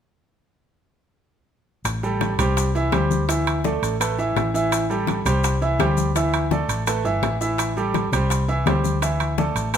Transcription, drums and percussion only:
1.85 high bongo medium
1.85 high conga soft
1.85 high timbale medium
1.85 maracas medium
2.03 high bongo soft
2.03 high conga soft
2.03 maracas soft
2.21 high bongo medium
2.21 high conga medium
2.21 high timbale medium
2.21 maracas soft
2.39 high conga soft
2.39 low conga medium
2.39 high timbale loud
2.39 maracas medium
2.57 high bongo medium
2.57 high conga soft
2.57 high timbale medium
2.57 maracas medium
2.75 high bongo soft
2.75 high conga soft
2.75 maracas soft
2.92 high bongo medium
2.92 low bongo medium
2.92 high conga medium
2.92 high timbale medium
2.92 maracas soft
3.11 high bongo soft
3.11 high conga medium
3.11 maracas medium
3.29 high bongo medium
3.29 high conga soft
3.29 high timbale medium
3.29 maracas medium
3.47 high bongo soft
3.47 high conga soft
3.47 high timbale loud
3.47 maracas soft
3.64 high bongo medium
3.64 high conga medium
3.64 maracas soft
3.83 high conga soft
3.83 high timbale medium
3.83 maracas medium
4.00 high bongo medium
4.00 high conga soft
4.00 high timbale medium
4.00 maracas medium
4.18 high bongo soft
4.18 high conga soft
4.18 maracas soft
4.36 high bongo medium
4.36 low bongo medium
4.36 high conga soft
4.36 high timbale medium
4.36 maracas soft
4.55 high bongo soft
4.55 maracas medium
4.72 high bongo medium
4.72 high conga soft
4.72 high timbale medium
4.72 maracas medium
4.90 high bongo soft
4.90 high conga soft
4.90 maracas soft
5.07 high bongo medium
5.07 high conga medium
5.07 high timbale medium
5.07 maracas soft
5.26 high conga soft
5.26 low conga medium
5.26 high timbale medium
5.26 maracas medium
5.43 high bongo medium
5.43 high conga soft
5.43 high timbale medium
5.43 maracas loud
5.61 high bongo soft
5.61 high conga soft
5.61 maracas soft
5.79 high bongo medium
5.79 low bongo medium
5.79 high conga medium
5.79 high timbale medium
5.79 maracas soft
5.97 high bongo soft
5.97 high conga medium
5.97 maracas medium
6.15 high bongo medium
6.15 high conga soft
6.15 high timbale medium
6.15 maracas medium
6.33 high bongo soft
6.33 high conga soft
6.33 high timbale medium
6.33 maracas soft
6.51 high bongo medium
6.51 high conga medium
6.51 maracas soft
6.69 high conga soft
6.69 high timbale medium
6.69 maracas medium
6.87 high bongo medium
6.87 high conga soft
6.87 high timbale medium
6.87 maracas medium
7.05 high bongo soft
7.05 high conga soft
7.05 maracas soft
7.23 high bongo medium
7.23 low bongo medium
7.23 high conga soft
7.23 high timbale medium
7.23 maracas soft
7.41 high bongo soft
7.41 maracas medium
7.58 high bongo medium
7.58 high conga soft
7.58 high timbale medium
7.58 maracas medium
7.76 high bongo soft
7.76 high conga soft
7.76 maracas soft
7.94 high bongo medium
7.94 high conga medium
7.94 high timbale medium
7.94 maracas soft
8.13 high conga soft
8.13 low conga medium
8.13 high timbale medium
8.13 maracas medium
8.30 high bongo medium
8.30 high conga soft
8.30 high timbale medium
8.30 maracas medium
8.48 high bongo soft
8.48 high conga soft
8.48 maracas soft
8.66 high bongo medium
8.66 low bongo medium
8.66 high conga medium
8.66 high timbale medium
8.66 low timbale medium
8.66 maracas soft
8.84 high bongo soft
8.84 high conga medium
8.84 maracas medium
9.02 high bongo medium
9.02 high conga soft
9.02 high timbale medium
9.02 maracas medium
9.20 high bongo soft
9.20 high conga soft
9.20 high timbale medium
9.20 maracas soft
9.38 high bongo medium
9.38 high conga loud
9.38 maracas soft
9.56 high conga soft
9.56 high timbale medium
9.56 maracas medium
9.74 high conga soft
9.74 high timbale medium
9.74 maracas medium

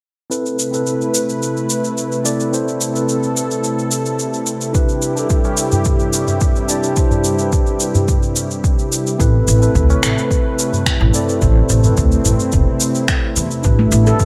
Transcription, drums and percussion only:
0.31 cabasa soft
0.46 cabasa soft
0.59 cabasa medium
0.74 cabasa soft
0.86 cabasa soft
1.01 cabasa soft
1.14 cabasa medium
1.29 cabasa soft
1.42 cabasa soft
1.57 cabasa soft
1.70 cabasa medium
1.84 cabasa soft
1.98 cabasa soft
2.12 cabasa soft
2.25 cabasa medium
2.40 cabasa soft
2.54 cabasa soft
2.68 cabasa soft
2.81 cabasa medium
2.96 cabasa soft
3.09 cabasa soft
3.23 cabasa soft
3.37 cabasa medium
3.51 cabasa soft
3.64 cabasa soft
3.79 cabasa soft
3.91 cabasa medium
4.06 cabasa soft
4.19 cabasa soft
4.34 cabasa soft
4.46 cabasa medium
4.61 cabasa soft
4.75 kick loud
4.75 cabasa soft
4.89 cabasa soft
5.02 cabasa medium
5.17 cabasa soft
5.30 kick loud
5.30 cabasa soft
5.44 tabla na medium
5.44 cabasa soft
5.57 tabla tin soft
5.57 cabasa medium
5.72 tabla ge medium
5.72 cabasa soft
5.85 kick medium
5.85 cabasa soft
5.99 tabla tin soft
5.99 cabasa soft
6.13 tabla na soft
6.13 cabasa medium
6.28 tabla ge medium
6.28 cabasa soft
6.41 kick loud
6.41 cabasa soft
6.56 tabla tin soft
6.56 cabasa soft
6.69 cabasa medium
6.83 tabla tin medium
6.83 cabasa soft
6.96 kick loud
6.96 cabasa soft
7.11 tabla ge medium
7.11 cabasa soft
7.24 cabasa medium
7.39 tabla tin soft
7.39 cabasa soft
7.52 kick loud
7.52 cabasa soft
7.67 cabasa soft
7.80 tabla tin soft
7.80 cabasa medium
7.95 tabla ge medium
7.95 cabasa soft
8.08 kick loud
8.08 cabasa soft
8.23 cabasa soft
8.36 tabla na soft
8.36 tabla tin soft
8.36 cabasa medium
8.51 cabasa soft
8.64 kick loud
8.64 tabla tin soft
8.64 cabasa soft
8.79 cabasa soft
8.92 cabasa medium
9.07 cabasa soft
9.20 kick medium
9.20 cabasa soft
9.48 cabasa medium
9.62 cabasa soft
9.75 kick medium
9.75 cabasa soft
9.90 tabla na medium
9.90 cabasa soft
10.02 finger snap medium
10.02 tabla tin soft
10.02 cabasa medium
10.18 cabasa soft
10.31 kick loud
10.31 cabasa soft
10.45 tabla tin soft
10.59 tabla na soft
10.59 cabasa medium
10.73 tabla ge medium
10.73 cabasa soft
10.86 finger snap medium
10.86 kick medium
10.86 cabasa soft
11.01 tabla tin medium
11.01 tabla ge medium
11.14 cabasa medium
11.29 tabla tin medium
11.29 cabasa soft
11.42 kick loud
11.42 cabasa soft
11.69 cabasa medium
11.84 tabla tin soft
11.84 tabla ge medium
11.84 cabasa soft
11.97 kick loud
11.97 cabasa soft
12.12 cabasa soft
12.25 tabla tin soft
12.25 tabla ge medium
12.25 cabasa medium
12.40 cabasa soft
12.52 kick loud
12.52 cabasa soft
12.80 tabla tin soft
12.80 cabasa medium
12.95 cabasa soft
13.08 finger snap medium
13.08 kick loud
13.08 tabla tin soft
13.08 cabasa soft
13.36 cabasa medium
13.51 cabasa soft
13.64 kick loud
13.64 cabasa soft
13.92 cabasa medium
14.07 cabasa soft
14.19 kick loud
14.19 cabasa soft

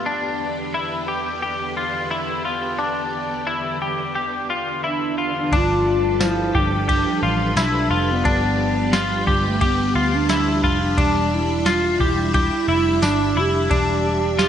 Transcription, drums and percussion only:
5.53 kick loud
5.53 ride medium
6.21 snare loud
6.21 ride medium
6.21 tambourine medium
6.55 kick medium
6.89 kick loud
6.89 ride medium
7.57 snare loud
7.57 ride medium
7.57 tambourine medium
8.25 kick loud
8.25 ride medium
8.93 snare loud
8.93 ride medium
8.93 tambourine medium
9.28 kick loud
9.61 kick loud
9.61 ride medium
10.29 snare loud
10.29 ride medium
10.29 tambourine medium
10.64 kick loud
10.98 kick loud
10.98 ride medium
11.66 snare loud
11.66 ride medium
11.66 tambourine medium
12.00 kick loud
12.34 kick loud
12.34 ride medium
13.02 snare loud
13.02 ride medium
13.02 tambourine medium
13.71 kick loud
13.71 ride medium
14.39 snare loud
14.39 ride medium
14.39 tambourine medium

